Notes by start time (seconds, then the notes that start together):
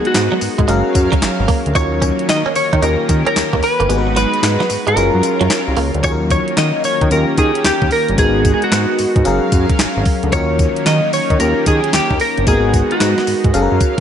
Already playing: G#3 B3 D#4 F#4 A#4
0.05 F#4, closed hi-hat
0.14 G#2, snare, clap, closed hi-hat, tambourine
0.32 F#3
0.41 G#2, muted clean electric guitar stroke, open hi-hat, tambourine
0.58 G#2 G#3, kick, closed hi-hat
0.68 F#1 F#3 G#3 C#4 G#4 A#4 F5, closed hi-hat, tambourine
0.95 F#2, muted clean electric guitar stroke, kick, closed hi-hat, tambourine
1.12 F#3, kick, closed hi-hat
1.22 G#1, snare, clap, closed hi-hat, tambourine
1.40 G#1
1.48 A#3, kick, open hi-hat
1.66 D2, closed hi-hat
1.75 D#2 D#3 F#3 A#3 C#4 D#4 F4 F#4 A#4 C#5, kick, closed hi-hat, tambourine
1.92 muted clean electric guitar stroke
2.02 C#4, kick, closed hi-hat, tambourine
2.19 closed hi-hat
2.29 D#3 D#5, snare, clap, closed hi-hat, tambourine
2.46 C#4
2.55 D#3 C#5, muted clean electric guitar stroke, open hi-hat, tambourine
2.73 D#3 D#4, kick, closed hi-hat
2.82 D#2 C#4 D#4 F4 G4 A#4, closed hi-hat, tambourine
3.09 D#3, muted clean electric guitar stroke, kick, closed hi-hat, tambourine
3.26 C#4 A#4, closed hi-hat
3.36 D#2, snare, clap, closed hi-hat, tambourine
3.53 D#2 A#3, kick
3.63 B4, muted clean electric guitar stroke, open hi-hat
3.80 G1 A#3, closed hi-hat
3.89 G#1 G#3 B3 D#4 F#4 G#4 B4, closed hi-hat, tambourine
3.98 B4
4.07 muted clean electric guitar stroke
4.16 F#3 B4, closed hi-hat, tambourine
4.34 closed hi-hat
4.43 G#2, snare, clap, closed hi-hat, tambourine
4.60 F#3, snare
4.70 G#2, muted clean electric guitar stroke, open hi-hat, tambourine
4.87 G#2 G#3 A#4, closed hi-hat
4.96 F#1 F#3 G#3 C#4 F4 G#4 A#4, closed hi-hat, tambourine
5.14 F#2
5.23 muted clean electric guitar stroke, closed hi-hat, tambourine
5.41 F#2 F#3, closed hi-hat
5.50 snare, clap, closed hi-hat, tambourine
5.68 C2
5.77 C#2 A#3, open hi-hat
5.94 D2, closed hi-hat
6.03 D#2 D#3 F#3 A#3 C#4 F4 F#4 G#4 C#5, kick, closed hi-hat, tambourine
6.12 A#4
6.30 C#5, kick, closed hi-hat, tambourine
6.48 closed hi-hat
6.57 D#3 D#5, snare, clap, closed hi-hat, tambourine
6.84 D#3 C#5, open hi-hat, tambourine
7.01 D#3, kick, closed hi-hat
7.10 D#2 C#4 F4 G4 A#4, closed hi-hat, tambourine
7.37 D#3 G#4, kick, closed hi-hat, tambourine
7.55 closed hi-hat
7.64 D#2 G4, snare, clap, closed hi-hat, tambourine
7.82 D#2, kick
7.91 A#4, open hi-hat
8.08 G1, closed hi-hat
8.17 G#1 G#3 B3 D#4 F#4 G#4 A#4, kick, closed hi-hat, tambourine
8.45 kick, closed hi-hat, tambourine
8.54 G#4
8.62 F#4, closed hi-hat
8.72 G#2, snare, clap, closed hi-hat, tambourine
8.99 G#2, open hi-hat, tambourine
9.16 G#2, kick, closed hi-hat
9.24 F#1 F#3 C#4 G#4 A#4 F5, closed hi-hat, tambourine
9.52 F#2, kick, closed hi-hat, tambourine
9.69 kick, closed hi-hat
9.79 G#1, snare, clap, closed hi-hat, tambourine
9.97 G#1
10.05 kick, open hi-hat
10.23 D2, closed hi-hat
10.32 D#2 D#3 F#3 A#3 C#4 F4 F#4 A#4 C#5, kick, closed hi-hat, tambourine
10.59 kick, closed hi-hat, tambourine
10.76 closed hi-hat
10.86 D#3 D#5, snare, clap, closed hi-hat, tambourine
11.13 D#3 C#5, open hi-hat, tambourine
11.30 D#3, kick, closed hi-hat
11.39 D#2 A#3 C#4 F4 G4 A#4, closed hi-hat, tambourine
11.66 D#3 G#4, kick, closed hi-hat, tambourine
11.84 closed hi-hat
11.93 D#2 G4, snare, clap, closed hi-hat, tambourine
12.11 D#2, kick
12.20 A#4, open hi-hat
12.38 G1, closed hi-hat
12.46 G#1 G#3 A#3 B3 D#4 F#4 G#4 A#4, kick, closed hi-hat, tambourine
12.53 B3
12.74 kick, closed hi-hat, tambourine
12.91 F#4, closed hi-hat
13.00 G#2, snare, clap, closed hi-hat, tambourine
13.18 snare
13.27 G#2, open hi-hat, tambourine
13.44 G#2, kick, closed hi-hat
13.53 F#1 F#3 C#4 G#4 A4 A#4 F5, closed hi-hat, tambourine
13.62 A#4
13.72 F#2
13.80 kick, closed hi-hat, tambourine